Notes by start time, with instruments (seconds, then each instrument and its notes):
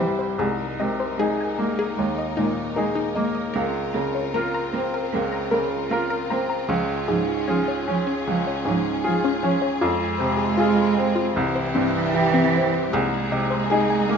Already playing: grand piano C2 G2 E4 G4, string section G3 E4 C5
0.00 grand piano G3, synth pluck C5
0.19 synth pluck C5
0.38 grand piano C2, string section G#3 D#4 A#4, cello G#3, synth pluck G#4
0.79 grand piano C3, cello G#3, synth pluck D#5
1.00 synth pluck C5
1.17 cello G#3, grand piano D#4 G#4, synth pluck G#4
1.40 synth pluck G#5
1.58 cello G#3, grand piano A#3
1.79 synth pluck G#4
1.97 grand piano D#2, cello G#3
2.18 synth pluck D#5
2.37 grand piano A#2, cello G#3, synth pluck D#4
2.76 cello G#3, grand piano D#4 G#4, synth pluck A#4
2.95 synth pluck D#4
3.15 cello G#3, grand piano A#3, synth pluck D#5
3.35 synth pluck D#5
3.53 grand piano C#2, cello A#3, string section C4 F4, synth pluck A#4
3.94 grand piano C#3, cello A#3, synth pluck F5
4.15 synth pluck C#5
4.34 cello A#3, grand piano F4 A#4, synth pluck A#4
4.54 synth pluck A#5
4.73 cello A#3, grand piano C4
4.94 synth pluck A#4
5.13 grand piano C#2, cello A#3
5.32 synth pluck A#5
5.51 grand piano C#3, cello A#3, synth pluck A#4
5.90 cello A#3, grand piano F4 A#4, synth pluck F5
6.10 synth pluck A#4
6.30 cello A#3, grand piano C4, synth pluck A#5
6.50 synth pluck A#5
6.67 grand piano C#2, cello F3, synth pluck C#4, string section C#4 G#4
7.08 grand piano G#2, cello F3, synth pluck G#4
7.28 synth pluck F4
7.48 cello F3, synth pluck C#4, grand piano F4 G#4
7.68 synth pluck C#5
7.88 cello F3, grand piano C#4
8.07 synth pluck C#4
8.27 grand piano C#2, cello F3
8.47 synth pluck C#5
8.65 grand piano G#2, cello F3, synth pluck C#4
9.04 cello F3, grand piano F4 G#4, synth pluck G#4
9.24 synth pluck C#4
9.43 cello F3, grand piano C#4, synth pluck C#5
9.62 synth pluck C#5
9.81 grand piano F2, cello G#3, string section C4 F4, synth pluck F4
10.19 grand piano C3, synth pluck C5
10.37 synth pluck G#4
10.57 synth pluck F4, grand piano F4 G#4
10.76 synth pluck F5
10.97 grand piano C4
11.16 synth pluck F4
11.35 grand piano C2, cello E3, string section E4 G4
11.56 synth pluck C5
11.75 grand piano G2, synth pluck C4
12.14 grand piano E4 G4, synth pluck G4
12.34 synth pluck C4
12.53 grand piano C4, synth pluck C5
12.74 synth pluck C5
12.92 grand piano C2, cello G#3, string section A#3 D#4 G#4, synth pluck G#4
13.31 grand piano C3, synth pluck D#5
13.50 synth pluck C5
13.70 grand piano D#4 G#4, synth pluck G#4
13.90 synth pluck G#5
14.09 grand piano A#3